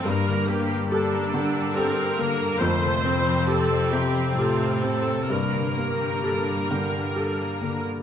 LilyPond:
<<
  \new Staff \with { instrumentName = "Viola section" } { \time 3/4 \key g \minor \tempo 4 = 67 << { bes'8 g'8 a'4 bes'4 | c''4 a'8 g'8 f'8 a'8 | bes'2. | } \\ { bes4 d'4 c'8 bes8 | a8 c'2~ c'8 | bes2. | } >> }
  \new Staff \with { instrumentName = "Felt piano" } { \time 3/4 \key g \minor g,8 bes8 <g' a'>8 d8 <g' a'>8 bes8 | f,8 c'8 <g' a'>8 c8 <g' a'>8 c'8 | g,8 bes8 <g' a'>8 d8 <g' a'>8 bes8 | }
  \new Staff \with { instrumentName = "Harp" } { \time 3/4 \key g \minor <g, a'>16 d16 bes16 g'16 a'16 bes'16 g''16 bes'16 a'16 bes16 d16 bes16 | f,16 c16 c'16 g'16 a'16 c''16 g''16 c''16 a'16 c'16 c16 c'16 | g,16 d16 bes16 g'16 a'16 d''16 g''8 a'16 bes16 d16 bes16 | }
  \new Staff \with { instrumentName = "Cello section" } { \clef bass \time 3/4 \key g \minor g,2. | f,2 a,4 | g,2. | }
>>